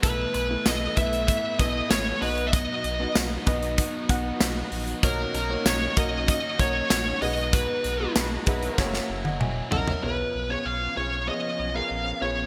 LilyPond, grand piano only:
<<
  \new Staff \with { instrumentName = "Grand piano" } { \time 4/4 \key cis \dorian \tempo 4 = 96 << { r1 | r1 | r1 | r2 r8. <dis'' fis''>16 <e'' gis''>8 <dis'' fis''>16 <cis'' e''>16~ |
<cis'' e''>16 r2. r8. | } \\ { <a b e' b'>8 r16 <a b e' b'>8 r16 <a b e' b'>8. r16 <a b e' b'>4 <b dis' fis' dis''>8~ | <b dis' fis' dis''>8 r16 <b dis' fis' dis''>8 r16 <b dis' fis' dis''>8. r16 <b dis' fis' fis''>4 r8 | <ais dis' fis' cis''>8 r16 <ais dis' fis' cis''>8 r16 <ais dis' fis' ais'>8. r16 <ais dis' fis' cis''>4 <gis dis' fis' b'>8~ | <gis dis' fis' b'>8 r16 <gis dis' fis' b'>8 r16 <gis dis' fis' b'>8 <ais e' fis' cis''>8 r4. |
<b eis' gis' cis''>8 r16 <b eis' gis' cis''>8 r16 <b eis' gis' cis''>16 r16 <b eis' gis' cis''>8 r16 <b eis' gis' ais'>8 r16 <b eis' gis' cis''>16 r16 | } >> }
  \new Staff \with { instrumentName = "Grand piano" } { \clef bass \time 4/4 \key cis \dorian b,4. r2 b,8~ | b,4 r2. | b,4. r2 b,8~ | b,4 r2. |
b,4. r2 r8 | }
>>